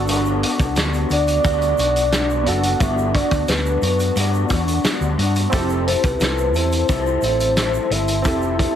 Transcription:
Already playing: fingered electric bass G1, synth keys B3 D4 F#4 A4
0.08 clean electric guitar G3 B3 D4 F#4, closed hi-hat, shaker
0.25 shaker
0.42 clean electric guitar B3 D4 F#4, closed hi-hat
0.59 fingered electric bass C2, kick, closed hi-hat, shaker
0.76 fingered electric bass D2, clean electric guitar G3 B3 D4 F#4, snare, closed hi-hat, shaker
0.94 closed hi-hat, shaker
1.10 fingered electric bass D2, clean electric guitar B3 D4 F#4, soft synth lead D5, closed hi-hat, shaker
1.28 closed hi-hat, shaker
1.44 fingered electric bass D2, clean electric guitar G3 B3 D4 F#4, kick, closed hi-hat, shaker
1.62 closed hi-hat, shaker
1.78 fingered electric bass B1, clean electric guitar B3 D4 F#4, closed hi-hat, shaker
1.96 closed hi-hat, shaker
2.12 clean electric guitar G3 B3 D4 F#4, snare, closed hi-hat, shaker
2.30 shaker
2.43 fingered electric bass F#1, synth keys B3 D4 F#4, clean electric guitar F#4, soft synth lead F#5, closed hi-hat
2.48 clean electric guitar B3 D4, synth keys A4
2.63 closed hi-hat, shaker
2.80 fingered electric bass G1, clean electric guitar G3 B3 D4 F#4, soft synth lead E5, kick, closed hi-hat, shaker
2.98 shaker
3.14 clean electric guitar B3 D4 F#4, soft synth lead D5, kick, closed hi-hat
3.31 fingered electric bass D2, kick, closed hi-hat, shaker
3.48 fingered electric bass D2, clean electric guitar G3 B3 D4 F#4, soft synth lead B4, snare, closed hi-hat, shaker
3.66 shaker
3.82 fingered electric bass F#2, clean electric guitar B3 D4 F#4, closed hi-hat, shaker
4.00 closed hi-hat, shaker
4.16 fingered electric bass G2, clean electric guitar G3 B3 D4 F#4, closed hi-hat, shaker
4.34 shaker
4.49 fingered electric bass E2, clean electric guitar B3 D4 F#4, kick, closed hi-hat, shaker
4.68 closed hi-hat, shaker
4.84 clean electric guitar G3 B3 D4 F#4, muted fingered electric bass stroke, snare, closed hi-hat, shaker
5.01 fingered electric bass D2, shaker
5.18 fingered electric bass G2, clean electric guitar B3 D4 F#4, closed hi-hat
5.35 closed hi-hat, shaker
5.50 fingered electric bass F1, clean electric guitar F3 C4 E4 A4, synth keys C4 E4 G4, kick, closed hi-hat, shaker
5.54 synth keys A4
5.69 shaker
5.86 clean electric guitar C4 E4 A4, soft synth lead C5, closed hi-hat
6.03 fingered electric bass C2, soft synth lead B4, kick, closed hi-hat, shaker
6.20 fingered electric bass C2, clean electric guitar F3 C4 E4 A4, snare, closed hi-hat, shaker
6.38 shaker
6.53 fingered electric bass E2, clean electric guitar C4 E4 A4, soft synth lead C5, closed hi-hat, shaker
6.72 closed hi-hat, shaker
6.89 fingered electric bass C2, clean electric guitar F3 C4 E4 A4, kick, closed hi-hat, shaker
7.06 shaker
7.22 fingered electric bass A1, clean electric guitar C4 E4 A4, closed hi-hat, shaker
7.40 closed hi-hat, shaker
7.56 clean electric guitar F3 C4 E4 A4, snare, closed hi-hat, shaker
7.74 shaker
7.90 fingered electric bass G1, clean electric guitar C4 E4 A4, soft synth lead E5, closed hi-hat
8.08 closed hi-hat, shaker
8.22 fingered electric bass F1, clean electric guitar F3 C4 E4 A4, synth keys C4 E4 G4, kick, closed hi-hat, shaker
8.27 synth keys A4
8.42 shaker
8.59 clean electric guitar C4 E4 A4, kick, closed hi-hat

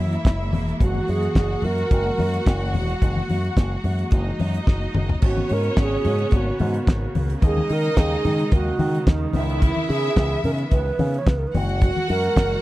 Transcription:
Already playing: fingered electric bass F#2, string section E3 G#3 A#3 E4, violin section E4 E5
0.13 closed hi-hat
0.25 fingered electric bass F#1, kick, snare, closed hi-hat
0.53 fingered electric bass E1, open hi-hat, muted conga, high conga, low conga
0.69 closed hi-hat
0.80 fingered electric bass F#1, string section F#4, violin section F#4 F#5, alto flute F#4, kick, closed hi-hat, muted conga, low conga
0.95 high conga
1.08 fingered electric bass F#2, alto flute G#4, open hi-hat
1.23 closed hi-hat
1.35 fingered electric bass F#1, alto flute G#4, kick, snare, closed hi-hat, muted conga
1.62 fingered electric bass F#2, alto flute A#4, open hi-hat, muted conga, low conga
1.78 closed hi-hat
1.91 fingered electric bass F#1, kick, closed hi-hat, muted conga
2.18 fingered electric bass F#2, open hi-hat, high conga
2.34 closed hi-hat
2.46 fingered electric bass F#1, kick, snare, closed hi-hat, muted conga
2.74 fingered electric bass E1, open hi-hat, high conga, low conga
2.90 closed hi-hat
3.02 fingered electric bass F#1, kick, closed hi-hat, low conga
3.16 high conga
3.29 fingered electric bass F#2, open hi-hat, muted conga, high conga
3.44 closed hi-hat
3.57 fingered electric bass F#1, kick, snare, closed hi-hat
3.84 fingered electric bass F#2, open hi-hat, muted conga, low conga
3.99 closed hi-hat
4.11 fingered electric bass F#1, violin section D#4 D#5, kick, closed hi-hat
4.40 fingered electric bass F#2, open hi-hat, high conga
4.54 closed hi-hat
4.67 fingered electric bass F#1, kick, snare, muted conga
4.95 fingered electric bass F#1, mid tom, muted conga, high conga, low conga
5.09 floor tom
5.22 fingered electric bass G#1, string section C#3 A#3 B3 F#4, violin section C#4 C#5, alto flute F#4, kick, crash, muted conga
5.37 high conga
5.49 fingered electric bass G#2, open hi-hat, muted conga
5.53 alto flute A#4
5.63 closed hi-hat
5.77 fingered electric bass G#1, kick, snare, closed hi-hat
5.81 alto flute G#4
6.05 fingered electric bass G#2, open hi-hat, muted conga, low conga
6.19 closed hi-hat
6.31 fingered electric bass G#1, kick, closed hi-hat, muted conga
6.37 alto flute F#4
6.59 fingered electric bass G#2, open hi-hat, high conga
6.74 closed hi-hat
6.87 fingered electric bass G#1, kick, snare, closed hi-hat, muted conga
7.15 fingered electric bass C#2, open hi-hat, muted conga, high conga, low conga
7.30 closed hi-hat
7.41 fingered electric bass D#2, string section D#3 G#3, violin section D#4 D#5, kick, closed hi-hat, muted conga
7.46 alto flute G#4
7.57 high conga
7.69 fingered electric bass D#3, alto flute A#4, open hi-hat, muted conga
7.84 closed hi-hat
7.97 fingered electric bass D#2, alto flute G#4, kick, snare, closed hi-hat, muted conga
8.25 fingered electric bass D#3, open hi-hat, muted conga, low conga
8.39 closed hi-hat
8.51 fingered electric bass D#2, alto flute F#4, kick, closed hi-hat, muted conga
8.79 fingered electric bass D#3, open hi-hat, high conga
8.94 closed hi-hat
9.07 fingered electric bass D#2, alto flute D#4, kick, snare, closed hi-hat
9.33 fingered electric bass C#2, string section E3 B3, violin section E4 E5, open hi-hat, muted conga, high conga, low conga
9.49 closed hi-hat
9.62 alto flute E4, kick, closed hi-hat, muted conga
9.76 high conga
9.89 fingered electric bass C#3, alto flute G#4, open hi-hat, muted conga
10.04 closed hi-hat
10.16 fingered electric bass C#2, kick, snare, closed hi-hat, muted conga
10.44 fingered electric bass C#3, alto flute A#4, open hi-hat, low conga
10.58 closed hi-hat
10.71 fingered electric bass C#2, alto flute B4, kick, closed hi-hat
10.99 fingered electric bass C#3, open hi-hat, muted conga, high conga
11.14 closed hi-hat
11.18 alto flute C#5
11.27 fingered electric bass C#2, alto flute B4, kick, snare, closed hi-hat, muted conga
11.38 alto flute A#4
11.47 alto flute B4
11.54 fingered electric bass F#1, string section E3 G#3 A#3 F#4, violin section F#4 F#5, open hi-hat, muted conga, high conga, low conga
11.69 closed hi-hat
11.81 alto flute F#4, kick, closed hi-hat, low conga
11.97 high conga
12.09 fingered electric bass F#2, alto flute A#4, open hi-hat
12.24 closed hi-hat
12.36 fingered electric bass F#1, kick, snare, closed hi-hat

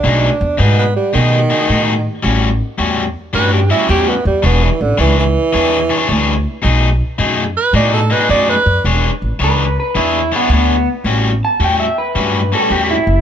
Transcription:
Already playing: tenor saxophone D4
0.04 upright bass B1, overdriven electric guitar B2 A3 D#4 G#4
0.41 upright bass E2
0.58 upright bass G#2, overdriven electric guitar B2 A3 D#4 G#4, tenor saxophone B3
0.79 tenor saxophone B3
0.96 tenor saxophone G3
1.13 overdriven electric guitar B2 A3 D#4 G#4, upright bass B2, tenor saxophone D#3
1.50 overdriven electric guitar B2 A3 D#4 G#4
1.59 overdriven electric guitar B2 A3 D#4 G#4
1.68 upright bass A2, overdriven electric guitar B2 A3 D#4 G#4
2.23 upright bass A1, overdriven electric guitar A2 G3 C#4 F#4
2.78 upright bass E2, overdriven electric guitar A2 G3 C#4 F#4
3.33 upright bass G2, overdriven electric guitar A2 G3 C#4 F#4, tenor saxophone B4
3.53 tenor saxophone G4
3.70 overdriven electric guitar A2 G3 C#4 F#4, tenor saxophone E4
3.79 overdriven electric guitar A2 G3 C#4 F#4
3.88 upright bass E2, overdriven electric guitar A2 G3 C#4 F#4, tenor saxophone G4
4.09 tenor saxophone B3
4.25 upright bass E2, tenor saxophone G3
4.43 upright bass E1, overdriven electric guitar E3 D4 G#4 C#5, tenor saxophone B3
4.64 tenor saxophone E3
4.81 upright bass A1, tenor saxophone D3
4.98 upright bass C#2, overdriven electric guitar E3 D4 G#4 C#5, tenor saxophone E3
5.19 tenor saxophone E3
5.53 upright bass E2, overdriven electric guitar E3 D4 G#4 C#5
5.90 overdriven electric guitar E3 D4 G#4 C#5
5.98 overdriven electric guitar E3 D4 G#4 C#5
6.08 upright bass D2, overdriven electric guitar E3 D4 G#4 C#5
6.62 upright bass B1, overdriven electric guitar B2 A3 D#4 G#4
7.18 upright bass F#2, overdriven electric guitar B2 A3 D#4 G#4
7.57 tenor saxophone B4
7.73 upright bass A2, overdriven electric guitar B2 A3 D#4 G#4, tenor saxophone D5
7.94 tenor saxophone A4
8.10 overdriven electric guitar B2 A3 D#4 G#4, tenor saxophone B4
8.20 overdriven electric guitar B2 A3 D#4 G#4
8.29 upright bass F#2, overdriven electric guitar B2 A3 D#4 G#4, tenor saxophone D5
8.50 tenor saxophone B4
8.66 upright bass F#2
8.84 upright bass E1, overdriven electric guitar E3 D4 G#4 C#5
9.22 upright bass A1
9.39 upright bass C#2, overdriven electric guitar E3 D4 G#4 C#5
9.44 clean electric guitar B4
9.80 clean electric guitar B4
9.95 upright bass E2, overdriven electric guitar E3 D4 G#4 C#5, clean electric guitar E4
10.32 overdriven electric guitar E3 D4 G#4 C#5
10.36 clean electric guitar B3
10.42 overdriven electric guitar E3 D4 G#4 C#5
10.49 upright bass D2, overdriven electric guitar E3 D4 G#4 C#5
10.53 clean electric guitar B3
11.04 upright bass A1, overdriven electric guitar A2 G3 C#4 F#4
11.45 clean electric guitar A5
11.60 upright bass E2, overdriven electric guitar A2 G3 C#4 F#4
11.64 clean electric guitar G5
11.80 clean electric guitar E5
11.98 clean electric guitar B4
12.15 upright bass G2, overdriven electric guitar A2 G3 C#4 F#4
12.52 overdriven electric guitar A2 G3 C#4 F#4, clean electric guitar A4
12.62 overdriven electric guitar A2 G3 C#4 F#4
12.70 upright bass E2, overdriven electric guitar A2 G3 C#4 F#4, clean electric guitar G4
12.90 clean electric guitar E4
13.07 upright bass F#1

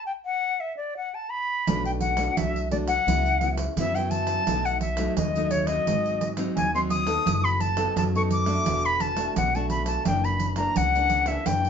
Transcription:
0.06 flute G5
0.25 flute F#5
0.60 flute E5
0.77 flute D5
0.97 flute F#5
1.15 flute A5
1.30 flute B5
1.67 upright bass B1, nylon-string guitar B2 A3 D4 F#4, pandeiro
1.85 flute G5, pandeiro
2.00 flute F#5, pandeiro
2.17 nylon-string guitar A3 D4 F#4, pandeiro
2.37 upright bass C2, nylon-string guitar F#3, flute E5, pandeiro
2.56 pandeiro
2.71 nylon-string guitar A3 D4 F#4, flute D5, pandeiro
2.87 flute F#5, pandeiro
3.07 upright bass C#2, nylon-string guitar C#3 F#3 B3 E4, pandeiro
3.26 pandeiro
3.41 nylon-string guitar F#3 B3 E4, pandeiro
3.57 pandeiro
3.77 upright bass F#2, nylon-string guitar C#3 F#3 B3 E4, flute E5, pandeiro
3.95 nylon-string guitar F#3 B3 E4, flute G5, pandeiro
4.11 flute A5, pandeiro
4.27 pandeiro
4.47 upright bass B1, nylon-string guitar B2 F#3 A3 D#4, pandeiro
4.65 flute F#5, pandeiro
4.81 flute E5, pandeiro
4.97 nylon-string guitar F#3 A3 D#4, pandeiro
5.17 upright bass D#2, nylon-string guitar F#2, flute D#5, pandeiro
5.35 nylon-string guitar F#3 A3 D#4, pandeiro
5.51 flute C#5, pandeiro
5.66 nylon-string guitar F#3 C4 D#4, flute D#5, pandeiro
5.87 upright bass G#1, nylon-string guitar G#2, pandeiro
6.06 pandeiro
6.21 pandeiro
6.37 nylon-string guitar F#3 C4 D#4, pandeiro
6.56 upright bass D#2, nylon-string guitar D#3, flute G#5, pandeiro
6.75 nylon-string guitar F#3 C4 D#4, flute C6, pandeiro
6.90 flute D#6, pandeiro
7.06 nylon-string guitar B3 D#4 A4, pandeiro
7.26 upright bass F#1, nylon-string guitar F#3, pandeiro
7.44 flute B5, pandeiro
7.60 flute A5, pandeiro
7.77 nylon-string guitar B3 D#4 A4, pandeiro
7.96 upright bass F#2, nylon-string guitar F#3, flute A5, pandeiro
8.15 nylon-string guitar B3 D#4 A4, flute C#6, pandeiro
8.31 flute D6, pandeiro
8.46 nylon-string guitar A3 D4 F#4, pandeiro
8.66 upright bass E1, nylon-string guitar E3, pandeiro
8.85 flute B5, pandeiro
9.00 flute A5, pandeiro
9.16 nylon-string guitar A3 D4 F#4, pandeiro
9.36 upright bass B1, nylon-string guitar B2, flute F#5, pandeiro
9.55 nylon-string guitar A3 D4 F#4, flute A5, pandeiro
9.70 flute B5, pandeiro
9.86 flute A5, pandeiro
10.05 upright bass F#1, nylon-string guitar F#2 E3 A#3 D4, flute G5, pandeiro
10.24 flute B5, pandeiro
10.40 pandeiro
10.56 nylon-string guitar E3 A#3 D4, flute A#5, pandeiro
10.76 upright bass C#2, nylon-string guitar C#3, flute F#5, pandeiro
10.95 nylon-string guitar E3 A#3 D4, pandeiro
11.10 pandeiro
11.26 nylon-string guitar E3 A#3 D4, flute E5, pandeiro
11.46 upright bass F#1, nylon-string guitar F#2 E3 A#3 D4, flute G5, pandeiro
11.65 pandeiro

